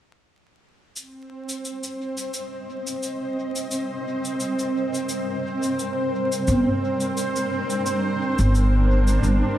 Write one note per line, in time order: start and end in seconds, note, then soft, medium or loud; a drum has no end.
0.96 9.58 G3 medium
0.96 9.58 C4 medium
0.96 9.58 C5 medium
0.96 cabasa medium
1.44 8.46 C4 medium
1.44 6.47 D#5 medium
1.49 cabasa soft
1.65 cabasa medium
1.83 cabasa soft
2.17 cabasa medium
2.34 cabasa medium
2.87 9.58 A#4 medium
2.87 cabasa medium
3.03 cabasa medium
3.56 cabasa medium
3.71 cabasa medium
4.25 cabasa medium
4.40 cabasa medium
4.59 cabasa soft
4.94 cabasa soft
5.09 cabasa medium
5.63 cabasa medium
5.79 cabasa medium
6.32 cabasa medium
6.47 6.64 G1 medium
6.47 cabasa medium
6.79 9.58 D4 medium
7.00 cabasa soft
7.17 cabasa medium
7.36 cabasa soft
7.70 cabasa medium
7.86 cabasa medium
8.39 9.21 G1 medium
8.39 cabasa soft
8.55 cabasa medium
8.97 9.58 D5 medium
9.07 cabasa medium
9.23 9.40 G1 medium
9.23 cabasa medium